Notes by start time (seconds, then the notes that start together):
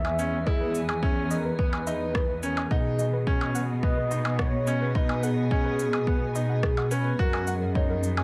Already playing: E2 E3 B3 G#4 E5
0.05 G#5, percussion blips
0.19 C#4 E5, shaker
0.46 E4 G#4 D#5, kick
0.61 B4
0.75 shaker
0.89 G#5, percussion blips
1.02 C#4 E5, kick
1.30 A#4 D#5, shaker
1.45 B4
1.58 B3 B4, kick
1.73 G#5, percussion blips
1.87 D#4 E5, shaker
2.15 D#5, kick, cross-stick
2.29 B4
2.43 C#4 A#4, shaker
2.57 G#5, percussion blips
2.64 A#4
2.70 B2 B3 D#4 G#4 D#5 F#5, kick
2.99 D#5, shaker
3.13 B4
3.27 C#4, kick
3.41 G#5, percussion blips
3.55 F#5, shaker
3.83 B3 D#5, kick
3.97 B4
4.11 D#4, shaker
4.25 G#5, percussion blips
4.39 C#5 F#5, kick, cross-stick
4.67 C#4 D#5, shaker
4.81 B4
4.95 D#4 B4, kick
5.09 G#5, percussion blips
5.23 G#4 F#5, shaker
5.51 C#4 D#5, kick
5.65 B4
5.79 shaker
5.93 G#5, percussion blips
6.07 B3 F#5, kick
6.35 D#4 D#5, shaker
6.49 F#5
6.63 kick, cross-stick
6.77 F#5, percussion blips
6.91 C#4 B4, shaker
7.19 F#2 A#3 F#4 A#4, kick
7.33 G#5, percussion blips
7.47 F#5, shaker
7.75 D#4 C#5, kick
7.89 A#4
8.03 shaker
8.17 G#5, percussion blips